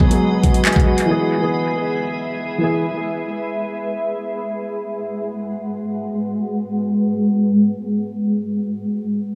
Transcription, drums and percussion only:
0.00 kick medium
0.11 closed hi-hat medium
0.44 kick medium
0.44 closed hi-hat medium
0.54 closed hi-hat medium
0.65 clap loud
0.65 closed hi-hat medium
0.73 kick medium
0.73 closed hi-hat medium
0.80 closed hi-hat medium
0.98 closed hi-hat medium

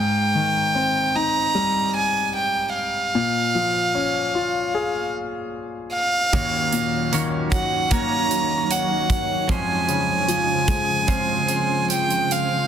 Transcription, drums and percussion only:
6.33 kick medium
6.33 closed hi-hat medium
6.73 closed hi-hat soft
7.13 closed hi-hat medium
7.52 kick medium
7.52 closed hi-hat medium
7.91 kick medium
7.91 closed hi-hat medium
8.31 closed hi-hat medium
8.71 closed hi-hat medium
9.10 kick medium
9.10 closed hi-hat medium
9.49 kick medium
9.49 closed hi-hat medium
9.89 closed hi-hat medium
10.29 closed hi-hat medium
10.68 kick medium
10.68 closed hi-hat medium
11.08 kick medium
11.08 closed hi-hat medium
11.48 closed hi-hat medium
11.90 closed hi-hat medium
12.10 closed hi-hat soft
12.31 closed hi-hat medium

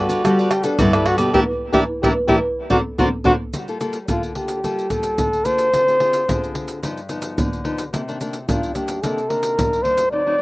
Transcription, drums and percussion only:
0.09 pandeiro medium
0.09 maracas medium
0.25 pandeiro medium
0.25 tamborim medium
0.25 low agogo medium
0.25 maracas medium
0.25 surdo medium
0.39 pandeiro soft
0.39 maracas soft
0.51 pandeiro medium
0.51 tamborim medium
0.51 low agogo medium
0.51 maracas medium
0.64 pandeiro medium
0.64 maracas loud
0.79 pandeiro medium
0.79 high agogo medium
0.79 maracas medium
0.79 surdo loud
0.93 pandeiro soft
0.93 tamborim medium
0.93 high agogo medium
0.93 maracas soft
1.06 pandeiro medium
1.06 tamborim medium
1.18 pandeiro medium
1.18 high agogo medium
1.18 maracas medium
1.34 surdo loud
1.73 surdo medium
2.04 surdo loud
2.29 surdo medium
2.71 surdo loud
2.99 surdo loud
3.25 surdo loud
3.53 pandeiro medium
3.53 maracas medium
3.53 surdo soft
3.68 pandeiro soft
3.68 maracas soft
3.81 pandeiro medium
3.81 maracas medium
3.93 pandeiro medium
3.93 maracas medium
4.08 pandeiro medium
4.08 maracas medium
4.08 surdo medium
4.23 pandeiro soft
4.23 maracas soft
4.35 pandeiro medium
4.48 pandeiro medium
4.48 maracas medium
4.64 pandeiro medium
4.64 maracas medium
4.64 surdo soft
4.79 pandeiro soft
4.79 maracas soft
4.90 pandeiro medium
4.90 maracas medium
4.90 surdo medium
5.03 pandeiro medium
5.03 maracas medium
5.18 pandeiro medium
5.18 maracas medium
5.18 surdo medium
5.33 pandeiro soft
5.33 maracas soft
5.45 pandeiro medium
5.45 maracas medium
5.58 pandeiro medium
5.58 maracas medium
5.73 pandeiro medium
5.73 maracas medium
5.73 surdo medium
5.88 pandeiro soft
5.88 maracas soft
6.00 pandeiro medium
6.13 pandeiro medium
6.13 maracas medium
6.29 pandeiro medium
6.29 maracas medium
6.29 surdo medium
6.44 pandeiro soft
6.44 maracas soft
6.55 pandeiro medium
6.68 pandeiro medium
6.68 maracas medium
6.83 pandeiro medium
6.83 maracas medium
6.83 surdo medium
6.97 pandeiro soft
6.97 maracas soft
7.09 pandeiro medium
7.09 maracas medium
7.22 pandeiro medium
7.22 maracas medium
7.38 pandeiro medium
7.38 maracas medium
7.38 surdo loud
7.53 pandeiro soft
7.53 maracas soft
7.65 pandeiro medium
7.78 pandeiro medium
7.78 maracas medium
7.94 pandeiro medium
7.94 maracas medium
7.94 surdo medium
8.09 pandeiro soft
8.09 maracas soft
8.21 pandeiro medium
8.21 maracas medium
8.33 pandeiro medium
8.33 maracas medium
8.49 pandeiro medium
8.49 maracas medium
8.49 surdo medium
8.63 pandeiro soft
8.63 maracas soft
8.75 pandeiro medium
8.75 maracas medium
8.88 pandeiro medium
8.88 maracas medium
9.04 pandeiro medium
9.04 maracas medium
9.04 surdo soft
9.18 pandeiro soft
9.18 maracas soft
9.30 pandeiro medium
9.43 pandeiro medium
9.43 maracas medium
9.59 pandeiro medium
9.59 maracas medium
9.59 surdo medium
9.73 pandeiro soft
9.73 maracas soft
9.85 pandeiro medium
9.98 pandeiro medium
9.98 maracas medium

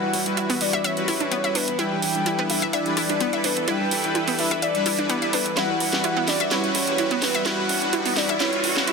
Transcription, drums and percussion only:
0.14 open hi-hat loud
0.26 closed hi-hat medium
0.37 closed hi-hat medium
0.50 open hi-hat medium
0.61 open hi-hat loud
0.73 closed hi-hat medium
0.84 closed hi-hat medium
0.97 closed hi-hat soft
1.08 open hi-hat loud
1.21 closed hi-hat soft
1.32 closed hi-hat medium
1.44 closed hi-hat soft
1.55 open hi-hat loud
1.68 closed hi-hat medium
1.79 closed hi-hat medium
2.02 open hi-hat loud
2.15 closed hi-hat soft
2.26 closed hi-hat medium
2.50 open hi-hat loud
2.62 closed hi-hat soft
2.73 closed hi-hat medium
2.86 closed hi-hat soft
2.97 open hi-hat loud
3.09 closed hi-hat soft
3.20 closed hi-hat medium
3.33 closed hi-hat soft
3.44 open hi-hat loud
3.57 closed hi-hat medium
3.68 closed hi-hat medium
3.91 open hi-hat loud
4.04 closed hi-hat soft
4.15 closed hi-hat medium
4.28 open hi-hat medium
4.39 open hi-hat loud
4.51 closed hi-hat soft
4.62 closed hi-hat medium
4.75 closed hi-hat soft
4.86 open hi-hat loud
4.98 closed hi-hat soft
5.10 closed hi-hat medium
5.22 closed hi-hat soft
5.33 open hi-hat loud
5.46 closed hi-hat soft
5.57 snare soft
5.57 closed hi-hat medium
5.80 open hi-hat loud
5.93 snare soft
5.93 closed hi-hat medium
6.04 closed hi-hat medium
6.28 snare soft
6.28 open hi-hat loud
6.40 closed hi-hat soft
6.51 snare soft
6.51 closed hi-hat medium
6.64 closed hi-hat soft
6.75 open hi-hat loud
6.87 closed hi-hat medium
6.98 closed hi-hat medium
7.11 closed hi-hat soft
7.22 snare medium
7.22 open hi-hat loud
7.35 closed hi-hat medium
7.46 snare medium
7.46 closed hi-hat medium
7.69 open hi-hat loud
7.82 closed hi-hat medium
7.93 closed hi-hat medium
8.05 open hi-hat medium
8.17 snare medium
8.17 open hi-hat loud
8.29 closed hi-hat medium
8.40 snare medium
8.40 closed hi-hat medium
8.53 closed hi-hat soft
8.64 open hi-hat loud
8.76 snare medium
8.76 closed hi-hat medium
8.87 closed hi-hat medium

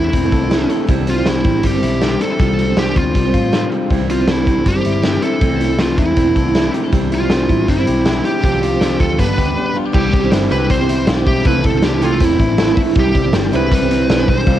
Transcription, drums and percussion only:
0.13 kick medium
0.13 closed hi-hat medium
0.32 kick medium
0.32 closed hi-hat medium
0.51 snare medium
0.51 closed hi-hat medium
0.70 closed hi-hat medium
0.88 kick loud
0.88 closed hi-hat medium
1.07 closed hi-hat medium
1.26 snare medium
1.26 closed hi-hat medium
1.45 kick medium
1.45 closed hi-hat medium
1.63 kick medium
1.63 closed hi-hat medium
1.83 closed hi-hat medium
2.01 snare medium
2.01 closed hi-hat medium
2.21 closed hi-hat medium
2.40 kick loud
2.40 closed hi-hat medium
2.59 closed hi-hat medium
2.77 snare loud
2.77 closed hi-hat medium
2.96 kick medium
2.96 closed hi-hat medium
3.15 kick medium
3.15 closed hi-hat medium
3.34 kick medium
3.34 closed hi-hat medium
3.53 snare medium
3.53 closed hi-hat medium
3.72 closed hi-hat medium
3.90 kick loud
3.90 closed hi-hat medium
4.10 closed hi-hat medium
4.28 snare loud
4.28 closed hi-hat medium
4.47 kick medium
4.47 closed hi-hat medium
4.66 kick medium
4.66 closed hi-hat medium
4.85 closed hi-hat medium
5.03 snare loud
5.03 closed hi-hat medium
5.22 closed hi-hat medium
5.41 kick medium
5.41 closed hi-hat medium
5.61 closed hi-hat medium
5.79 snare loud
5.79 closed hi-hat medium
5.98 kick medium
5.98 closed hi-hat medium
6.17 kick medium
6.17 closed hi-hat medium
6.36 kick medium
6.36 closed hi-hat medium
6.55 snare medium
6.55 closed hi-hat medium
6.74 closed hi-hat medium
6.93 kick loud
6.93 closed hi-hat medium
7.12 closed hi-hat medium
7.30 snare loud
7.30 closed hi-hat medium
7.49 kick medium
7.49 closed hi-hat medium
7.68 kick medium
7.68 closed hi-hat medium
7.87 closed hi-hat medium
8.06 snare medium
8.06 closed hi-hat medium
8.25 open hi-hat medium
8.44 kick medium
8.44 closed hi-hat medium
8.63 closed hi-hat medium
8.81 snare medium
8.81 closed hi-hat medium
9.00 kick medium
9.00 closed hi-hat medium
9.19 kick medium
9.19 closed hi-hat medium
9.38 kick medium
9.38 closed hi-hat medium
9.94 kick loud
9.94 crash medium
10.13 kick medium
10.13 closed hi-hat medium
10.32 snare loud
10.32 closed hi-hat medium
10.52 closed hi-hat medium
10.70 kick medium
10.70 closed hi-hat medium
10.89 closed hi-hat medium
11.07 snare loud
11.07 closed hi-hat medium
11.27 kick medium
11.27 open hi-hat medium
11.45 kick loud
11.45 closed hi-hat medium
11.64 kick medium
11.64 closed hi-hat medium
11.82 snare loud
11.82 closed hi-hat medium
12.02 closed hi-hat medium
12.20 kick medium
12.20 closed hi-hat medium
12.40 kick medium
12.40 closed hi-hat medium
12.58 snare loud
12.58 closed hi-hat medium
12.77 kick medium
12.77 open hi-hat medium
12.95 kick loud
12.95 closed hi-hat medium
13.15 kick medium
13.15 closed hi-hat medium
13.33 snare loud
13.33 closed hi-hat medium
13.53 closed hi-hat medium
13.71 kick medium
13.71 closed hi-hat loud
13.91 closed hi-hat medium
14.10 snare medium
14.10 closed hi-hat medium
14.28 kick medium
14.28 open hi-hat medium
14.47 kick loud
14.47 closed hi-hat medium

